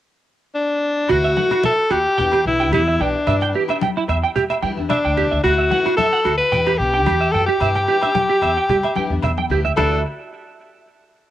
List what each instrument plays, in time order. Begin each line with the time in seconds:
0.55 alto saxophone D4
1.09 upright bass D2, steel-string acoustic guitar E3 A3 E4 F#4, clean electric guitar F#4, alto saxophone F#4, cajon bass, cajon slap, muted conga, low agogo
1.24 clean electric guitar E5, cajon slap
1.37 steel-string acoustic guitar E3 A3 E4 F#4, clean electric guitar F#5, muted conga, high conga
1.51 steel-string acoustic guitar A3 E4 F#4, clean electric guitar F#4, cajon slap, low agogo
1.64 alto saxophone A4, clean electric guitar E5, cajon bass, cajon slap, high conga
1.90 upright bass D#2, clean electric guitar F#4, alto saxophone G4, cajon slap, low agogo
2.18 upright bass E2, steel-string acoustic guitar E3 B3 D4 G4, clean electric guitar G5, cajon bass, muted conga
2.32 clean electric guitar G4, cajon slap, low agogo
2.45 upright bass B1, steel-string acoustic guitar E3 B3 D4 G4, alto saxophone E4
2.59 steel-string acoustic guitar B3 D4 G4, clean electric guitar G5
2.72 upright bass E2, alto saxophone E4, clean electric guitar G4, cajon bass, cajon slap, high conga, low agogo
2.88 clean electric guitar E5
3.00 upright bass B1, steel-string acoustic guitar E3 B3 D4 G4, alto saxophone D4, clean electric guitar G5, muted conga
3.15 cajon slap
3.27 upright bass G2, steel-string acoustic guitar E3 B3 D4 G4, clean electric guitar E5, cajon bass, cajon slap, muted conga, low agogo
3.41 clean electric guitar G5, cajon slap
3.53 steel-string acoustic guitar E3 B3 D4 G4, clean electric guitar G4, muted conga
3.68 steel-string acoustic guitar B3 D4 G4, clean electric guitar E5, cajon slap, low agogo
3.81 clean electric guitar G5, cajon bass, cajon slap, high conga
3.97 clean electric guitar E4
4.09 upright bass E2, clean electric guitar E5, cajon slap, low agogo
4.23 clean electric guitar G5
4.35 upright bass G3, clean electric guitar G4, cajon bass, muted conga, low conga
4.50 clean electric guitar E5, cajon slap, low agogo
4.62 steel-string acoustic guitar E3 B3 D4 G4, upright bass G3, clean electric guitar G5, high conga
4.77 upright bass E2, steel-string acoustic guitar B3 D4 G4
4.89 alto saxophone D4, clean electric guitar E5, cajon bass, cajon slap, high conga, low agogo
5.05 upright bass D2, clean electric guitar G5
5.16 steel-string acoustic guitar E3 B3 D4 G4, clean electric guitar G4, muted conga, low conga
5.31 upright bass D2, clean electric guitar E5, cajon slap
5.43 upright bass D2, steel-string acoustic guitar A3 E4 F#4, alto saxophone F#4, clean electric guitar F#4, muted steel-string acoustic guitar stroke, cajon bass, cajon slap, muted conga, low agogo
5.58 clean electric guitar E5, cajon slap
5.70 steel-string acoustic guitar E3 A3 E4 F#4, clean electric guitar F#5, muted conga, high conga
5.85 steel-string acoustic guitar A3 E4 F#4, clean electric guitar F#4, cajon slap, low agogo
5.97 alto saxophone A4, clean electric guitar E5, cajon bass, cajon slap, high conga
6.13 clean electric guitar F#5
6.25 upright bass D2, clean electric guitar F#4, cajon slap, low agogo
6.37 alto saxophone B4
6.52 upright bass E2, steel-string acoustic guitar E3 B3 D4 G4, clean electric guitar G5, cajon bass, muted conga
6.67 clean electric guitar G4, cajon slap, low agogo
6.78 upright bass B1, steel-string acoustic guitar B3 D4 G4, alto saxophone G4, muted steel-string acoustic guitar stroke
6.94 steel-string acoustic guitar B3 D4 G4, clean electric guitar G5
7.06 upright bass E2, clean electric guitar G4, cajon bass, cajon slap, high conga, low agogo
7.21 clean electric guitar E5
7.32 upright bass F#2, steel-string acoustic guitar B3 D4, alto saxophone A4, clean electric guitar G5, muted conga
7.36 steel-string acoustic guitar G4
7.46 alto saxophone G4, clean electric guitar G4
7.60 upright bass G2, steel-string acoustic guitar E3 B3 D4 G4, clean electric guitar E5, cajon bass, cajon slap, muted conga, low agogo
7.75 clean electric guitar G5, cajon slap
7.87 steel-string acoustic guitar E3 B3 D4 G4, clean electric guitar G4, muted conga
8.01 steel-string acoustic guitar B3 D4 G4, clean electric guitar E5, cajon slap, low agogo
8.15 clean electric guitar G5, cajon bass, cajon slap, high conga
8.29 clean electric guitar G4
8.42 upright bass E2, clean electric guitar E5, cajon slap, low agogo
8.57 clean electric guitar G5
8.69 upright bass G3, clean electric guitar G4, cajon bass, muted conga, low conga
8.83 clean electric guitar E5, cajon slap, low agogo
8.95 steel-string acoustic guitar E3 B3 D4 G4, upright bass G3, clean electric guitar G5, high conga
9.10 upright bass E2, steel-string acoustic guitar B3 D4 G4
9.23 upright bass E2, clean electric guitar E5, cajon bass, cajon slap, high conga, low agogo
9.38 clean electric guitar G5, high conga
9.49 upright bass D2, steel-string acoustic guitar E3 B3 D4 G4, clean electric guitar G4, cajon slap, low conga
9.65 clean electric guitar E5, low conga
9.76 upright bass D2, steel-string acoustic guitar E3 A3 D4 F#4, clean electric guitar F#4 D5 E5, alto saxophone A4, cajon bass, muted conga, low agogo